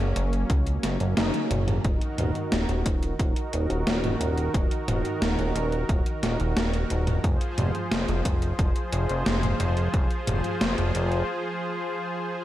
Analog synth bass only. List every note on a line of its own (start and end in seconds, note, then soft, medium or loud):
0.00 0.13 F#1 medium
0.16 0.45 F#1 loud
0.50 0.78 C#2 loud
0.84 0.98 F#1 medium
1.01 1.15 F#1 medium
1.17 1.32 F#1 loud
1.51 1.79 F#1 medium
1.85 1.99 D#1 loud
2.18 2.33 D#1 loud
2.52 2.66 D#1 medium
2.69 2.83 D#1 medium
2.86 3.14 D#1 loud
3.19 3.34 D#1 medium
3.53 3.67 D#1 loud
3.70 3.84 D#1 medium
3.87 4.15 D#1 loud
4.21 4.49 D#1 medium
4.54 4.69 D#1 loud
4.88 5.02 D#1 loud
5.22 5.36 D#1 medium
5.39 5.53 D#1 medium
5.55 5.84 D#1 loud
5.89 6.03 D#1 medium
6.23 6.37 D#1 loud
6.40 6.54 D#1 medium
6.57 6.85 D#1 loud
6.90 7.19 D#1 medium
7.24 7.38 F1 loud
7.58 7.72 F1 loud
7.91 8.06 F1 medium
8.08 8.23 F1 medium
8.25 8.54 F1 loud
8.59 8.73 F1 medium
8.93 9.07 F1 medium
9.10 9.24 F1 medium
9.27 9.55 F1 loud
9.60 9.89 F1 medium
9.94 10.08 F1 loud
10.28 10.42 F1 loud
10.61 10.75 F1 medium
10.78 10.92 F1 medium
10.95 11.23 F1 loud